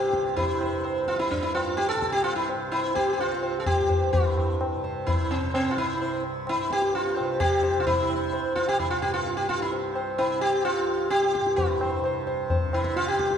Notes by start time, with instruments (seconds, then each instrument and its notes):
Already playing: tanpura C2 G2 C3, sitar G4
0.11 tanpura C3, tabla ke
0.36 sitar E4, tabla tin, tabla ge
0.61 sitar C5, tabla na
0.73 tanpura C2
0.84 sitar C5, tabla na
1.08 sitar F4, tabla ke
1.19 sitar E4, tabla te
1.31 tanpura G2, sitar D4, tabla tin, tabla ge
1.43 sitar E4
1.55 sitar F4, tabla na
1.77 sitar G4, tabla te
1.89 sitar A4, tabla te
1.94 tanpura C3
2.02 tabla ke
2.12 sitar G4, tabla te
2.24 sitar F4, tabla tin
2.36 sitar E4
2.49 tabla na
2.56 tanpura C3
2.72 sitar E4 C5, tabla na
2.95 sitar G4 C5, tabla ke
3.08 tabla te
3.13 sitar G4
3.17 tanpura C2, sitar F4 C5, tabla tin
3.43 sitar C5, tabla na
3.60 sitar A4
3.66 sitar G4, tabla na, tabla ge
3.79 tanpura G2
3.89 sitar C5, tabla ge
4.13 tanpura G2, sitar E4, tabla tin, tabla ge
4.37 tabla na
4.61 tabla na
4.75 tanpura C3
4.84 sitar C5, tabla te
5.07 sitar E4, tabla tin, tabla ge
5.31 sitar C4, tabla na
5.35 tanpura C3
5.54 sitar C4, tabla na
5.71 sitar F4
5.77 sitar E4, tabla ke
5.96 tanpura C2
6.00 sitar C5, tabla tin
6.24 tabla na
6.47 sitar E4, tabla na
6.57 tanpura G2
6.71 sitar G4, tabla ke
6.82 tabla te
6.93 sitar F4, tabla tin
7.16 tanpura C3, sitar C5, tabla na
7.40 sitar G4, tabla na, tabla ge
7.63 sitar C5, tabla te
7.78 tanpura C3, sitar F4
7.87 sitar E4, tabla tin, tabla ge
8.10 tabla na
8.32 sitar C5, tabla na
8.40 tanpura C2
8.56 sitar F4, tabla ke
8.68 sitar G4, tabla te
8.79 sitar E4, tabla tin, tabla ge
8.90 sitar F4
9.00 tanpura G2, sitar G4, tabla na
9.14 sitar F4
9.27 tabla te
9.37 sitar G4, tabla te
9.49 sitar F4, tabla ke
9.61 tanpura C3, sitar E4, tabla te
9.72 tabla tin
9.95 sitar C5, tabla na
10.18 tanpura C3, sitar E4, tabla na
10.41 sitar G4, tabla te
10.65 sitar F4, tabla tin
10.80 tanpura C2
10.88 tabla na
11.10 sitar G4, tabla te
11.23 tabla te
11.35 tabla ke
11.41 tanpura G2
11.47 tabla te
11.56 sitar E4, tabla tin, tabla ge
11.81 sitar C5, tabla na
12.01 tanpura C3, tabla na
12.05 sitar C5
12.27 sitar C5, tabla te
12.50 sitar C5, tabla tin, tabla ge
12.61 tanpura C3
12.73 sitar E4, tabla na
12.84 tabla ke
12.96 sitar F4, tabla te
13.08 sitar G4, tabla te
13.19 tanpura C2, tabla ke
13.31 tabla te